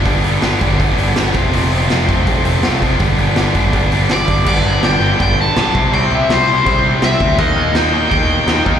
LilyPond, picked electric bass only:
\new Staff \with { instrumentName = "Picked electric bass" } { \clef bass \time 4/4 \key g \mixolydian \tempo 4 = 164 g,,8 g,,8 g,,8 g,,8 g,,8 g,,8 g,,8 f,,8 | f,,8 f,,8 f,,8 f,,8 f,,8 f,,8 c,8 f,,8 | g,,8 g,,8 g,,8 g,,8 g,,8 g,,8 g,,8 g,,8 | g,,8 g,,8 g,,8 g,,8 g,,4 b,,8 c,8 |
c,8 c,8 c,8 c,8 c,4 c,8 d,8 | ees,8 ees,8 ees,8 ees,8 ees,4 ees,8 ees,8 | }